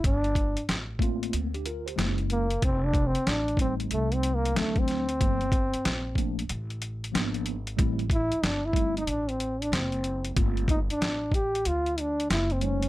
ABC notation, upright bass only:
X:1
M:4/4
L:1/16
Q:"Swing 16ths" 1/4=93
K:Gm
V:1 name="Upright bass" clef=bass
G,,,3 z A,,,4 D,,4 ^F,,,4 | F,,,3 z A,,,4 C,,4 D,,4 | G,,,3 z B,,,4 A,,,4 ^G,,,4 | A,,,3 z G,,,4 A,,,4 ^F,,,4 |
G,,,3 z A,,,4 D,,4 ^F,,,4 |]